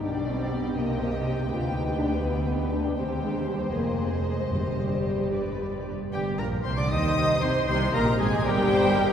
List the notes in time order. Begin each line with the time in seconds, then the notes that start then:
0.04 B1 B2 D4 G4 D5 G5
0.29 C4
0.53 B3
0.77 C2 C3 A#3 D#5
1.02 A#3
1.26 C4
1.50 D2 F4 B4
1.74 D#4
1.98 D4
2.23 B3
2.46 B3
2.72 D4
2.96 D#2 C4 G4 C5 G5
3.21 G#3
3.46 G3
3.71 F1 F2 A#3 G#4 D#5
4.24 G#3
4.51 G1 G2 G3 G4
5.33 B4 D5
6.12 G1 G2 G3 G4 G5
6.38 A#1 A#2 A#3 A#4 A#5
6.64 C2 C3 C4 C5 C6
6.77 D3 D4 D5 D6
6.91 D#2 D#3 D#4 C5 D#5 D#6
7.42 C2 C3 C4 C5 C6
7.68 C2 C3 C4 G4 C5 C6
7.93 A#1 A#2 A#3 A#4 A#5
8.19 G#1 G#2 G#3 G#4 G#5
8.44 G1 G2 G3 G4 A#4 G5
8.71 C5
8.95 A#4